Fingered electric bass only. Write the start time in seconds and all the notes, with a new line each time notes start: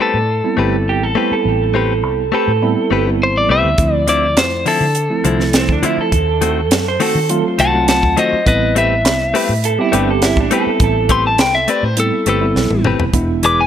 0.14 A2
0.57 G1
1.02 A1
1.31 muted fingered electric bass stroke
1.45 A1
2.03 C2
2.48 A2
2.91 G1
3.35 A1
3.49 C2
3.64 D2
3.78 D2
4.37 F2
4.81 D3
5.24 C2
5.69 D2
5.98 muted fingered electric bass stroke
6.12 D#2
6.70 F#2
7.15 D#3
7.59 C2
8.03 D#2
8.33 muted fingered electric bass stroke
8.46 A1
9.04 C2
9.49 A2
9.93 G1
10.37 A1
10.67 muted fingered electric bass stroke
10.80 A1
11.39 C2
11.83 A2
12.26 G1
12.55 B1
12.71 A1
12.84 G1
13.00 E1
13.13 E1